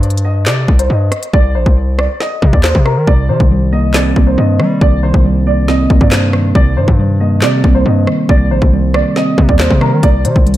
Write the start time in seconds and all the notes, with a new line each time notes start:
Already playing: G2
0.03 closed hi-hat
0.10 closed hi-hat
0.17 closed hi-hat
0.25 D#5
0.46 C3 D5, snare, clap, closed hi-hat
0.68 C2, kick
0.79 C5, closed hi-hat
0.90 G2 D#5
1.12 cross-stick, closed hi-hat
1.23 closed hi-hat
1.33 C2 D5, kick
1.55 A#1 C5
1.66 C2, kick
1.98 D5, cross-stick
2.20 D#5, snare
2.42 C3, kick
2.53 D#2 D5, kick
2.64 C5, snare, clap
2.75 C3, kick
2.86 A#4, cross-stick
2.97 D#3
3.07 C2 C3 D5, kick
3.29 C3 D#3 C5
3.40 C2, kick
3.51 G3
3.73 A#3 D#5
3.94 C4 D5, snare, clap
4.16 C2 A#3, kick
4.27 C5
4.38 G2 D#5
4.60 D#3 G3, cross-stick
4.81 C2 C3 D5, kick
5.03 D#3 C5
5.14 C2, kick
5.25 G3
5.47 A#3 D5
5.68 C4 D#5, snare
5.90 C2 A#3, kick
6.01 G2 D5, kick
6.12 C5, snare, clap
6.33 D#3, cross-stick
6.55 C2 C3 D5, kick
6.77 G2 D#3 C5
6.88 G2, kick
6.99 G3
7.20 A#3 D#5
7.42 C3 C4 D5, snare, clap
7.64 C2 A#3, kick
7.75 C5
7.86 G2 D#5
8.07 D#3, cross-stick
8.29 C2 C3 D5, kick
8.51 A#1 D#3 C5
8.62 C2, kick
8.72 G3
8.94 A#3 D5, cross-stick
9.16 C4 D#5, snare
9.38 C3 A#3, kick
9.49 D#2 D5, kick
9.60 C5, snare, clap
9.71 C3, kick
9.81 D#3 A#4, cross-stick
9.92 D#3
10.03 C2 C3 D5, kick, closed hi-hat
10.25 C3 D#3 C5, closed hi-hat
10.36 C2, kick
10.46 G3, closed hi-hat
10.54 closed hi-hat